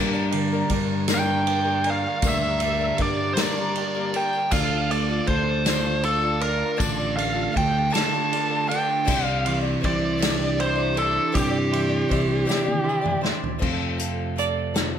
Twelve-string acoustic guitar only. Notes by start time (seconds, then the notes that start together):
Already playing: G2 D3 G3 A#3 D4 A#4
0.13 G3 A#3 D4 A#4
0.53 G3 A#3 D4 A#4
0.71 G3 A#3 D4 A#4
1.09 G2 D3 G3 A#3 D4 A#4
1.27 G3 A#3 D4 A#4
1.64 G3 A#3 D4 A#4
1.83 G3 A#3 D4 A#4
2.23 G2 D3 G3 A#3 D4 A#4
2.41 G3 A#3 D4 A#4
2.79 G3 A#3 D4 A#4
2.98 G3 A#3 D4 A#4
3.36 G2 D3 G3 A#3 D4 A#4
3.56 G3 A#3 D4 A#4
3.94 G3 A#3 D4 A#4
4.13 G3 A#3 D4 A#4
4.52 D3 A3 D4 F4 A4
4.70 D4 F4 A4
5.08 D4 F4 A4
5.26 A3 D4 F4 A4
5.65 D3 A3 D4 F4 A4
5.83 D4 F4 A4
6.21 D4 F4 A4
6.40 D4 F4
6.76 D3 A3 D4 F4 A4
6.96 D4 F4 A4
7.32 D4 F4 A4
7.52 A3 D4 F4 A4
7.90 D3 A3 D4 F4 A4
8.11 D4 F4 A4
8.48 D4 F4 A4
8.67 A3 D4 F4 A4
9.05 C4 E4 G4 D5
9.24 E4 G4 D5
9.61 E4 G4 D5
9.81 C4 E4 G4 D5
10.18 C4 E4 G4 D5
10.37 E4 G4 D5
10.75 E4 G4 D5
10.94 C4 E4 G4 D5
11.32 C4 E4 G4 D5
11.50 E4 G4 D5
11.89 E4 G4 D5
12.08 C4 E4 G4 D5
12.45 C4 E4 G4 D5
12.64 E4 G4 D5
13.01 E4 G4 D5
13.21 C4 E4 G4 D5
13.58 F2 C3 F3 A3 C4 A4
13.98 F3 A3 C4 A4
14.36 F3 A3 C4 A4
14.74 F2 C3 F3 A3 C4 A4